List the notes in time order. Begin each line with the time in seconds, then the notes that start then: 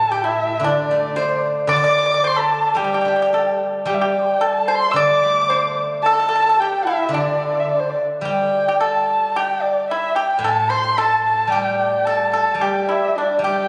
Already playing: A2 A4 A5
0.10 G4 G5
0.23 E4 E5
0.60 D3
0.64 D4 D5
0.91 A3
1.16 D4 C5
1.67 D3 D5
1.72 D6
1.76 D5
1.84 D5
1.91 D5
1.98 D5
2.06 D5
2.14 D5
2.23 C5
2.27 C6
2.36 A4
2.41 A5
2.75 G3 G4
2.79 G4 G5
2.84 G4
2.94 G4
3.01 D4 G4
3.08 G4
3.16 G4
3.22 G4
3.33 G4 A4
3.85 G3 G4 G5
3.94 E5
4.01 G4 G5
4.19 C6 D6
4.26 G5 A5
4.32 D5 E5
4.39 A4 C5
4.47 A5
4.68 C5
4.75 C6
4.89 E5 E6
4.93 D3 D5
5.00 D6
5.23 A3
5.48 D4 C5
6.02 A4 A5
6.13 A4
6.19 A4
6.29 A4
6.35 A4
6.42 A4
6.49 A4
6.58 G4 G5
6.84 E4 E5
7.09 D3 D4
7.13 D4 D5
7.59 E5
7.69 D5
7.79 C5
7.89 D5
8.21 G3 G4 G5
8.68 G4
8.80 A4 A5
9.36 G4 G5
9.62 D5
9.91 E4 E5
10.15 G4 G5
10.39 A2
10.43 A4 A5
10.70 C5 C6
10.98 A4 A5
11.25 A5
11.47 G3 G5
11.52 G4
11.78 G5
12.05 A4 A5
12.33 A4 A5
12.54 G3
12.60 G4 G5
12.89 E4 E5
13.16 D4 D5
13.39 G3
13.43 G4 G5